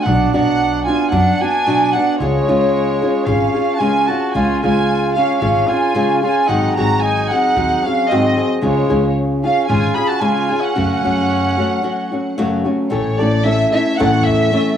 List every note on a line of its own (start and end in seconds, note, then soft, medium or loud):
0.04 0.24 B1 medium
0.04 0.34 B2 soft
0.04 0.34 F#3 medium
0.04 0.33 B3 medium
0.04 0.34 D4 medium
0.04 0.33 D4 medium
0.04 0.32 F#5 medium
0.09 0.33 F#4 medium
0.33 0.85 B1 medium
0.33 0.88 B2 medium
0.33 0.88 F#3 medium
0.33 0.87 B3 medium
0.33 0.87 D4 medium
0.33 0.84 D4 medium
0.33 0.87 F#4 medium
0.33 0.83 F#5 medium
0.85 1.12 D4 medium
0.85 1.09 F4 medium
0.85 1.12 F#4 soft
0.85 1.09 G#5 medium
0.89 1.12 B3 soft
1.11 1.30 F#2 loud
1.11 1.40 F#3 medium
1.11 1.41 B3 soft
1.11 1.40 D4 medium
1.11 1.41 D4 medium
1.11 1.41 F#4 medium
1.11 1.38 F#5 medium
1.40 1.66 B3 soft
1.40 1.92 D4 medium
1.40 1.67 D4 soft
1.40 1.66 F#4 soft
1.40 1.94 G#5 medium
1.66 1.94 B2 medium
1.66 1.94 F#3 medium
1.66 1.95 B3 medium
1.66 1.95 D4 medium
1.66 1.95 F#4 medium
1.92 2.17 D4 medium
1.92 2.18 F#5 medium
1.97 2.21 B3 soft
1.97 2.20 D4 soft
1.97 2.20 F#4 soft
2.18 2.38 C#2 medium
2.18 2.48 C#3 medium
2.18 3.28 G#3 medium
2.18 2.49 G#3 medium
2.18 2.48 C#4 medium
2.18 2.48 F4 medium
2.18 3.22 C#5 medium
2.22 2.47 G#4 medium
2.48 2.99 C#2 medium
2.48 3.02 C#3 soft
2.48 3.26 G#3 medium
2.48 3.02 C#4 soft
2.48 3.02 F4 medium
2.48 3.02 G#4 medium
3.02 3.27 C#4 soft
3.02 3.27 F4 medium
3.02 3.27 G#4 medium
3.25 3.45 G#1 medium
3.25 3.55 G#3 soft
3.25 3.74 C#4 medium
3.25 3.56 C#4 medium
3.25 3.54 F4 medium
3.25 3.53 G#4 medium
3.25 3.74 F5 medium
3.54 3.79 C#4 soft
3.54 3.80 F4 soft
3.54 3.80 G#4 soft
3.74 3.81 F#4 soft
3.74 3.80 A5 medium
3.78 4.09 C#3 medium
3.78 4.09 G#3 medium
3.78 4.09 C#4 medium
3.78 4.09 F4 medium
3.78 4.10 F4 medium
3.78 4.08 G#4 medium
3.78 4.08 G#5 medium
4.07 4.34 F4 soft
4.07 4.34 F#4 medium
4.07 4.34 G#4 soft
4.07 4.34 A5 medium
4.11 4.33 C#4 soft
4.32 4.53 C#2 medium
4.32 4.63 C#3 medium
4.32 4.63 G#3 medium
4.32 4.63 C#4 medium
4.32 4.63 F4 medium
4.32 4.62 F4 medium
4.32 4.62 G#4 medium
4.32 4.60 G#5 medium
4.61 5.15 C#2 medium
4.61 5.18 C#3 soft
4.61 5.40 G#3 soft
4.61 5.17 C#4 soft
4.61 5.14 F4 medium
4.61 5.17 F4 medium
4.61 5.16 G#4 soft
4.61 5.12 G#5 medium
5.15 5.40 C#4 soft
5.15 5.41 C#4 medium
5.15 5.41 F4 soft
5.15 5.41 G#4 soft
5.15 5.38 F5 medium
5.40 5.61 G#1 medium
5.40 5.70 G#3 medium
5.40 5.70 C#4 medium
5.40 5.70 F4 medium
5.40 5.69 G#4 medium
5.40 5.67 F5 medium
5.68 5.94 C#4 soft
5.68 6.22 F4 medium
5.68 5.94 F4 soft
5.68 5.95 G#4 soft
5.68 6.21 G#5 medium
5.95 6.24 C#3 medium
5.95 6.24 G#3 medium
5.95 6.23 C#4 medium
5.95 6.22 F4 medium
5.95 6.22 G#4 medium
6.22 6.49 C#4 soft
6.22 6.49 F4 medium
6.22 6.49 F4 soft
6.22 6.49 G#4 soft
6.22 6.46 G#5 medium
6.47 6.68 G#1 medium
6.47 6.77 G#2 medium
6.47 6.77 D#3 medium
6.47 6.77 F#3 medium
6.47 6.77 C4 medium
6.47 6.76 D#4 medium
6.47 6.76 F#4 medium
6.47 6.76 G#4 medium
6.47 6.76 F#5 medium
6.75 7.32 G#2 medium
6.75 7.32 D#3 soft
6.75 7.32 F#3 medium
6.75 7.31 C4 medium
6.75 7.04 F#4 medium
6.75 7.31 F#4 soft
6.75 7.31 G#4 medium
6.75 6.99 A#5 medium
6.79 7.29 G#1 medium
7.00 7.30 D#4 medium
7.00 7.30 G#5 medium
7.29 7.56 C4 soft
7.29 7.85 D#4 medium
7.29 7.56 G#4 medium
7.29 7.83 F#5 medium
7.33 7.56 F#3 soft
7.33 7.56 F#4 medium
7.56 7.74 D#2 medium
7.56 7.85 F#3 soft
7.56 7.85 C4 medium
7.56 7.85 F#4 medium
7.56 7.85 G#4 medium
7.83 8.11 C#4 medium
7.83 8.10 F#4 soft
7.83 8.10 G#4 soft
7.83 8.09 F5 medium
7.87 8.10 F#3 soft
7.87 8.10 C4 soft
8.06 8.50 C4 medium
8.06 8.48 D#5 medium
8.11 8.38 G#2 medium
8.11 8.38 D#3 medium
8.11 8.37 F#3 medium
8.11 8.37 C4 medium
8.11 8.36 F#4 medium
8.11 8.36 G#4 medium
8.37 8.61 F#3 soft
8.37 8.62 C4 soft
8.37 8.62 F#4 soft
8.37 8.62 G#4 soft
8.61 8.81 C#2 medium
8.61 8.89 C#3 medium
8.61 8.89 G#3 medium
8.61 9.12 G#3 medium
8.61 8.89 C#4 medium
8.61 8.89 F4 medium
8.61 8.89 G#4 medium
8.61 9.11 C#5 medium
8.90 9.42 C#2 medium
8.90 9.44 C#3 medium
8.90 9.44 G#3 soft
8.90 9.45 C#4 medium
8.90 9.44 F4 medium
8.90 9.43 G#4 medium
9.43 9.67 C#4 medium
9.43 9.68 C#4 soft
9.43 9.68 F4 medium
9.43 9.69 G#4 medium
9.43 9.68 F5 medium
9.68 9.88 G#1 loud
9.68 9.97 G#3 medium
9.68 9.97 C#4 medium
9.68 9.97 F4 medium
9.68 9.97 G#4 medium
9.68 9.95 G#5 medium
9.95 10.20 C#4 soft
9.95 10.20 F4 soft
9.95 10.11 G#4 medium
9.95 10.20 G#4 soft
9.95 10.09 B5 medium
10.09 10.23 F#4 medium
10.09 10.22 A5 medium
10.21 10.50 C#3 medium
10.21 10.50 G#3 medium
10.21 10.50 C#4 medium
10.21 10.49 F4 medium
10.21 10.62 F4 medium
10.21 10.48 G#4 medium
10.21 10.62 G#5 medium
10.49 10.75 C#4 soft
10.49 10.75 F4 soft
10.49 10.75 G#4 soft
10.61 12.36 C#4 medium
10.61 12.36 F#5 medium
10.75 11.04 F#2 medium
10.75 10.95 F#2 medium
10.75 11.04 C#3 medium
10.75 11.04 F#3 medium
10.75 11.05 A3 medium
10.75 11.03 C#4 medium
10.75 11.04 F#4 medium
11.04 11.56 F#2 medium
11.04 11.59 F#2 soft
11.04 11.58 C#3 soft
11.04 11.58 F#3 medium
11.04 11.59 A3 medium
11.04 11.58 C#4 medium
11.04 11.57 F#4 medium
11.58 11.81 F#3 soft
11.58 11.82 A3 medium
11.58 11.82 C#4 medium
11.58 11.83 F#4 medium
11.83 12.11 F#3 medium
11.83 12.12 A3 medium
11.83 12.12 C#4 medium
11.83 12.11 F#4 medium
12.12 12.37 F#3 soft
12.12 12.37 A3 soft
12.12 12.37 C#4 soft
12.12 12.37 F#4 soft
12.38 12.66 F#2 medium
12.38 12.66 C#3 medium
12.38 12.66 F#3 medium
12.38 12.66 A3 medium
12.38 12.65 C#4 medium
12.38 12.64 F#4 medium
12.65 12.90 F#3 soft
12.65 12.89 A3 soft
12.65 12.90 C#4 soft
12.65 12.91 F#4 soft
12.90 13.62 A1 medium
12.90 13.19 A2 medium
12.90 13.19 E3 medium
12.90 13.19 A3 medium
12.90 13.19 C#4 medium
12.90 13.19 E4 medium
12.90 13.18 A4 medium
12.90 13.17 C#5 medium
13.19 13.43 A3 soft
13.19 13.43 C#4 soft
13.19 13.44 E4 soft
13.19 13.45 A4 soft
13.19 13.44 D5 medium
13.44 13.73 A3 medium
13.44 13.73 C#4 medium
13.44 13.73 E4 medium
13.44 13.72 A4 medium
13.44 13.71 E5 medium
13.72 13.98 A3 soft
13.72 13.99 C#4 soft
13.72 13.99 E4 medium
13.72 13.98 A4 soft
13.72 13.96 E5 medium
13.96 14.52 A2 medium
13.96 14.77 E3 medium
13.96 14.51 A3 medium
13.96 14.52 C#4 medium
13.96 14.53 E4 medium
13.96 14.26 F#5 medium
14.00 14.18 E2 loud
14.00 14.52 A4 medium
14.25 14.77 E2 medium
14.25 14.77 E5 medium
14.52 14.77 A3 medium
14.52 14.77 C#4 medium
14.52 14.77 E4 medium
14.52 14.77 A4 medium